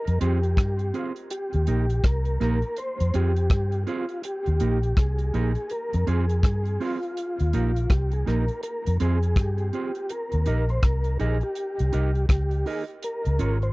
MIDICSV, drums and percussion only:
0, 0, Header, 1, 2, 480
1, 0, Start_track
1, 0, Tempo, 732601
1, 856, Time_signature, 4, 2, 24, 8
1, 8995, End_track
2, 0, Start_track
2, 0, Title_t, "Drums"
2, 47, Note_on_c, 9, 42, 54
2, 113, Note_off_c, 9, 42, 0
2, 136, Note_on_c, 9, 42, 78
2, 202, Note_off_c, 9, 42, 0
2, 283, Note_on_c, 9, 42, 44
2, 349, Note_off_c, 9, 42, 0
2, 374, Note_on_c, 9, 36, 115
2, 379, Note_on_c, 9, 42, 97
2, 381, Note_on_c, 9, 37, 109
2, 440, Note_off_c, 9, 36, 0
2, 444, Note_off_c, 9, 42, 0
2, 447, Note_off_c, 9, 37, 0
2, 518, Note_on_c, 9, 42, 48
2, 583, Note_off_c, 9, 42, 0
2, 617, Note_on_c, 9, 42, 62
2, 682, Note_off_c, 9, 42, 0
2, 759, Note_on_c, 9, 42, 55
2, 825, Note_off_c, 9, 42, 0
2, 854, Note_on_c, 9, 42, 103
2, 920, Note_off_c, 9, 42, 0
2, 1001, Note_on_c, 9, 42, 45
2, 1067, Note_off_c, 9, 42, 0
2, 1092, Note_on_c, 9, 42, 66
2, 1158, Note_off_c, 9, 42, 0
2, 1243, Note_on_c, 9, 42, 50
2, 1308, Note_off_c, 9, 42, 0
2, 1335, Note_on_c, 9, 36, 106
2, 1338, Note_on_c, 9, 37, 118
2, 1339, Note_on_c, 9, 42, 88
2, 1400, Note_off_c, 9, 36, 0
2, 1404, Note_off_c, 9, 37, 0
2, 1404, Note_off_c, 9, 42, 0
2, 1476, Note_on_c, 9, 42, 57
2, 1541, Note_off_c, 9, 42, 0
2, 1579, Note_on_c, 9, 42, 76
2, 1586, Note_on_c, 9, 37, 59
2, 1645, Note_off_c, 9, 42, 0
2, 1652, Note_off_c, 9, 37, 0
2, 1717, Note_on_c, 9, 42, 41
2, 1783, Note_off_c, 9, 42, 0
2, 1812, Note_on_c, 9, 42, 70
2, 1877, Note_off_c, 9, 42, 0
2, 1967, Note_on_c, 9, 42, 56
2, 2032, Note_off_c, 9, 42, 0
2, 2056, Note_on_c, 9, 42, 76
2, 2121, Note_off_c, 9, 42, 0
2, 2204, Note_on_c, 9, 42, 44
2, 2269, Note_off_c, 9, 42, 0
2, 2293, Note_on_c, 9, 36, 117
2, 2296, Note_on_c, 9, 42, 99
2, 2299, Note_on_c, 9, 37, 113
2, 2359, Note_off_c, 9, 36, 0
2, 2362, Note_off_c, 9, 42, 0
2, 2364, Note_off_c, 9, 37, 0
2, 2438, Note_on_c, 9, 42, 48
2, 2504, Note_off_c, 9, 42, 0
2, 2535, Note_on_c, 9, 42, 63
2, 2601, Note_off_c, 9, 42, 0
2, 2678, Note_on_c, 9, 42, 49
2, 2744, Note_off_c, 9, 42, 0
2, 2774, Note_on_c, 9, 42, 105
2, 2840, Note_off_c, 9, 42, 0
2, 2922, Note_on_c, 9, 42, 43
2, 2987, Note_off_c, 9, 42, 0
2, 3012, Note_on_c, 9, 42, 69
2, 3078, Note_off_c, 9, 42, 0
2, 3165, Note_on_c, 9, 42, 44
2, 3230, Note_off_c, 9, 42, 0
2, 3255, Note_on_c, 9, 36, 124
2, 3258, Note_on_c, 9, 37, 111
2, 3259, Note_on_c, 9, 42, 85
2, 3321, Note_off_c, 9, 36, 0
2, 3324, Note_off_c, 9, 37, 0
2, 3325, Note_off_c, 9, 42, 0
2, 3397, Note_on_c, 9, 42, 57
2, 3463, Note_off_c, 9, 42, 0
2, 3499, Note_on_c, 9, 42, 77
2, 3564, Note_off_c, 9, 42, 0
2, 3637, Note_on_c, 9, 42, 47
2, 3703, Note_off_c, 9, 42, 0
2, 3732, Note_on_c, 9, 42, 77
2, 3798, Note_off_c, 9, 42, 0
2, 3888, Note_on_c, 9, 42, 54
2, 3953, Note_off_c, 9, 42, 0
2, 3978, Note_on_c, 9, 42, 66
2, 4044, Note_off_c, 9, 42, 0
2, 4124, Note_on_c, 9, 42, 45
2, 4190, Note_off_c, 9, 42, 0
2, 4215, Note_on_c, 9, 36, 122
2, 4220, Note_on_c, 9, 42, 104
2, 4223, Note_on_c, 9, 37, 107
2, 4280, Note_off_c, 9, 36, 0
2, 4286, Note_off_c, 9, 42, 0
2, 4288, Note_off_c, 9, 37, 0
2, 4360, Note_on_c, 9, 42, 48
2, 4426, Note_off_c, 9, 42, 0
2, 4459, Note_on_c, 9, 46, 45
2, 4525, Note_off_c, 9, 46, 0
2, 4604, Note_on_c, 9, 42, 47
2, 4670, Note_off_c, 9, 42, 0
2, 4698, Note_on_c, 9, 42, 94
2, 4763, Note_off_c, 9, 42, 0
2, 4846, Note_on_c, 9, 42, 49
2, 4911, Note_off_c, 9, 42, 0
2, 4935, Note_on_c, 9, 42, 64
2, 5001, Note_off_c, 9, 42, 0
2, 5087, Note_on_c, 9, 42, 45
2, 5152, Note_off_c, 9, 42, 0
2, 5175, Note_on_c, 9, 36, 113
2, 5178, Note_on_c, 9, 37, 120
2, 5179, Note_on_c, 9, 42, 80
2, 5240, Note_off_c, 9, 36, 0
2, 5244, Note_off_c, 9, 37, 0
2, 5245, Note_off_c, 9, 42, 0
2, 5318, Note_on_c, 9, 42, 55
2, 5384, Note_off_c, 9, 42, 0
2, 5421, Note_on_c, 9, 42, 78
2, 5428, Note_on_c, 9, 37, 61
2, 5487, Note_off_c, 9, 42, 0
2, 5494, Note_off_c, 9, 37, 0
2, 5558, Note_on_c, 9, 42, 45
2, 5623, Note_off_c, 9, 42, 0
2, 5653, Note_on_c, 9, 42, 73
2, 5718, Note_off_c, 9, 42, 0
2, 5808, Note_on_c, 9, 42, 55
2, 5873, Note_off_c, 9, 42, 0
2, 5896, Note_on_c, 9, 42, 70
2, 5962, Note_off_c, 9, 42, 0
2, 6045, Note_on_c, 9, 42, 40
2, 6111, Note_off_c, 9, 42, 0
2, 6133, Note_on_c, 9, 36, 126
2, 6137, Note_on_c, 9, 42, 113
2, 6140, Note_on_c, 9, 37, 118
2, 6199, Note_off_c, 9, 36, 0
2, 6203, Note_off_c, 9, 42, 0
2, 6205, Note_off_c, 9, 37, 0
2, 6276, Note_on_c, 9, 42, 47
2, 6342, Note_off_c, 9, 42, 0
2, 6375, Note_on_c, 9, 42, 65
2, 6441, Note_off_c, 9, 42, 0
2, 6518, Note_on_c, 9, 42, 51
2, 6584, Note_off_c, 9, 42, 0
2, 6614, Note_on_c, 9, 42, 93
2, 6679, Note_off_c, 9, 42, 0
2, 6760, Note_on_c, 9, 42, 43
2, 6825, Note_off_c, 9, 42, 0
2, 6851, Note_on_c, 9, 42, 69
2, 6916, Note_off_c, 9, 42, 0
2, 7003, Note_on_c, 9, 42, 31
2, 7069, Note_off_c, 9, 42, 0
2, 7094, Note_on_c, 9, 36, 108
2, 7096, Note_on_c, 9, 37, 125
2, 7096, Note_on_c, 9, 42, 83
2, 7159, Note_off_c, 9, 36, 0
2, 7161, Note_off_c, 9, 37, 0
2, 7162, Note_off_c, 9, 42, 0
2, 7235, Note_on_c, 9, 42, 59
2, 7300, Note_off_c, 9, 42, 0
2, 7336, Note_on_c, 9, 42, 80
2, 7402, Note_off_c, 9, 42, 0
2, 7475, Note_on_c, 9, 42, 34
2, 7541, Note_off_c, 9, 42, 0
2, 7570, Note_on_c, 9, 42, 77
2, 7636, Note_off_c, 9, 42, 0
2, 7725, Note_on_c, 9, 42, 52
2, 7791, Note_off_c, 9, 42, 0
2, 7815, Note_on_c, 9, 42, 67
2, 7880, Note_off_c, 9, 42, 0
2, 7962, Note_on_c, 9, 42, 32
2, 8027, Note_off_c, 9, 42, 0
2, 8053, Note_on_c, 9, 36, 119
2, 8055, Note_on_c, 9, 42, 99
2, 8058, Note_on_c, 9, 37, 116
2, 8118, Note_off_c, 9, 36, 0
2, 8121, Note_off_c, 9, 42, 0
2, 8123, Note_off_c, 9, 37, 0
2, 8197, Note_on_c, 9, 42, 49
2, 8262, Note_off_c, 9, 42, 0
2, 8296, Note_on_c, 9, 46, 64
2, 8361, Note_off_c, 9, 46, 0
2, 8439, Note_on_c, 9, 42, 36
2, 8505, Note_off_c, 9, 42, 0
2, 8534, Note_on_c, 9, 42, 96
2, 8600, Note_off_c, 9, 42, 0
2, 8683, Note_on_c, 9, 42, 47
2, 8749, Note_off_c, 9, 42, 0
2, 8773, Note_on_c, 9, 42, 64
2, 8839, Note_off_c, 9, 42, 0
2, 8924, Note_on_c, 9, 42, 33
2, 8990, Note_off_c, 9, 42, 0
2, 8995, End_track
0, 0, End_of_file